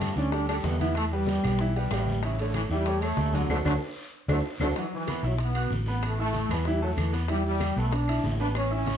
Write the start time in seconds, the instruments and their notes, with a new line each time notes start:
Already playing: fingered electric bass G2, upright piano G3 G4 A4, trombone section A3
0.01 high bongo, high conga, high timbale, low timbale, short guiro, claves, maracas
0.16 fingered electric bass D2, upright piano D3 D4 D5, trombone section C#4, short guiro, maracas
0.32 upright piano G3 G4 A4, trombone section D4, high bongo, high timbale, long guiro, maracas
0.48 upright piano G3 G4 A4, trombone section D4, high timbale, claves, maracas
0.64 fingered electric bass E2, trombone section B3, high bongo, low bongo, high conga, low timbale, short guiro, maracas
0.79 upright piano E3 E4 E5, trombone section B3, high conga, high timbale, short guiro, maracas
0.95 trombone section A3, high bongo, high timbale, long guiro, claves, maracas
1.11 trombone section G3, upright piano G3 G4 B4, high bongo, high conga, maracas
1.27 high bongo, high conga, high timbale, low timbale, short guiro, maracas
1.43 fingered electric bass B1, upright piano G3 G4 B4, high bongo, high conga, low conga, high timbale, short guiro, claves, maracas
1.59 upright piano E3 E4 E5, high bongo, long guiro, maracas
1.75 upright piano G3 G4 B4, high bongo, high timbale, maracas
1.91 fingered electric bass A1, upright piano G3 G4 B4, high bongo, low bongo, high conga, high timbale, low timbale, short guiro, claves, maracas
2.06 high conga, short guiro, maracas
2.23 trombone section C#3, upright piano E3 E4 E5, high bongo, high timbale, long guiro, maracas
2.39 trombone section D3, upright piano A3 A4 C#5, high conga, high timbale, maracas
2.54 trombone section E3, high bongo, high conga, high timbale, low timbale, short guiro, claves, maracas
2.69 fingered electric bass E2, upright piano E3 E4 E5, trombone section G3, short guiro, maracas
2.85 upright piano A3 A4 C#5, high bongo, high conga, high timbale, long guiro, maracas
3.02 trombone section A3, upright piano A3 A4 C#5, high conga, high timbale, claves, maracas
3.17 fingered electric bass D2, high bongo, low bongo, high conga, low timbale, short guiro, maracas
3.33 trombone section D3, upright piano F#3 F#4 F#5, high conga, high timbale, short guiro, maracas
3.48 fingered electric bass D2, trombone section D3 F#3 A3, upright piano D4 F#4 A4, low bongo, high conga, high timbale, long guiro, claves, maracas
3.65 fingered electric bass D2, trombone section D3 F#3 A3, upright piano D4 F#4 A4, low bongo, high conga, high timbale, long guiro, claves, maracas
4.28 fingered electric bass D2, trombone section D3 F#3 A3, upright piano D4 F#4 A4, low bongo, high conga, high timbale, long guiro, claves, maracas
4.60 fingered electric bass D2, trombone section D3 F#3 A3, upright piano D4 F#4 A4, low bongo, high conga, high timbale, long guiro, claves, maracas
4.76 trombone section E3, upright piano F#3 F#4 F#5, high bongo, high timbale, long guiro, maracas
4.91 trombone section E3, high bongo, high conga, maracas
5.07 upright piano B3 B4 B5, high bongo, high conga, high timbale, short guiro, claves, maracas
5.23 fingered electric bass B1, trombone section F#3, upright piano E4 E5 E6, high bongo, short guiro, maracas
5.38 high bongo, high timbale, long guiro, maracas
5.43 trombone section B3
5.55 upright piano F#4 F#5 F#6, high timbale, claves, maracas
5.70 fingered electric bass A1, high bongo, low bongo, high conga, short guiro, maracas
5.86 upright piano B3 B4 B5, trombone section B3, high bongo, short guiro, maracas
6.02 trombone section A3, high bongo, high timbale, long guiro, claves, maracas
6.18 trombone section A3, upright piano E4 E5 E6, high bongo, high conga, maracas
6.33 high bongo, high conga, high timbale, short guiro, maracas
6.49 fingered electric bass E2, trombone section E3, upright piano B3 B4 B5, high bongo, high conga, low conga, high timbale, short guiro, claves, maracas
6.65 upright piano E3 E4 E5, trombone section G3, high bongo, long guiro, maracas
6.82 trombone section F#3, upright piano A3 A4 A5, high conga, maracas
6.97 fingered electric bass E2, trombone section E3, high bongo, low bongo, high conga, high timbale, short guiro, claves, maracas
7.13 upright piano B3 B4 B5, high bongo, high conga, high timbale, short guiro, maracas
7.28 upright piano E3 E4 E5, trombone section G3, high bongo, high timbale, long guiro, maracas
7.44 trombone section G3, high bongo, maracas
7.60 upright piano G3 G4 G5, high bongo, high conga, high timbale, short guiro, claves, maracas
7.76 fingered electric bass B1, trombone section A3, upright piano B3 B4 B5, high bongo, short guiro, maracas
7.92 trombone section D4, high bongo, high timbale, long guiro, maracas
8.08 upright piano E4 E5 E6, high timbale, claves, maracas
8.24 fingered electric bass A1, high bongo, low bongo, high conga, low timbale, short guiro, maracas
8.39 upright piano B3 B4 B5, trombone section D4, high bongo, short guiro, maracas
8.55 trombone section C#4, high bongo, high timbale, long guiro, claves, maracas
8.71 trombone section C#4, upright piano E4 E5 E6, high bongo, high conga, maracas
8.86 high bongo, high conga, high timbale, short guiro, maracas